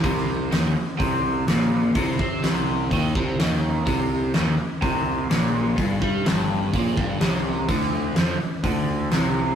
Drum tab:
HH |o---o---o---o---|o---o---o---o---|o---o---o---o---|o---o---o---o---|
SD |-o--o-------o---|----o-------o---|----o-------o---|----o-------o---|
BD |o-------o-------|o-o-----o-o-----|o-------o-------|o-o-----o-o-----|

HH |o---o---o---o---|
SD |-o--o-------o---|
BD |o-------o-------|